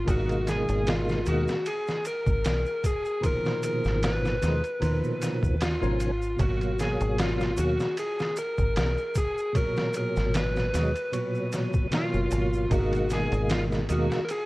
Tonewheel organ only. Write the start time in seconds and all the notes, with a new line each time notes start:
0.05 B2 D#3 G#3
0.09 A#3
1.25 B2 D#3 G#3 A#3
3.21 B2 D#3 F3
3.25 A#2
4.41 B2 D#3 F3 G#3
4.80 A#2 B2 D#3 F3
5.81 B2 D#3 F3 C#4
6.37 B2 F#3
6.41 A#3
7.56 B2 F#3 A#3
9.53 B2 F#3
9.57 A#2
10.72 B2 F#3 G#3
11.12 A#2 B2 F#3
11.91 B2 F#3 A#3
12.68 B2 D#3 G#3
12.73 A#3
13.88 B2 D#3 G#3 A#3